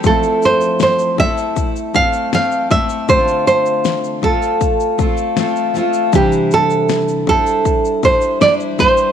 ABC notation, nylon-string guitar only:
X:1
M:4/4
L:1/8
Q:1/4=79
K:Flyd
V:1 name="Nylon-string guitar"
A c c e2 f f e | c c2 A4 z | G A2 A2 c d c |]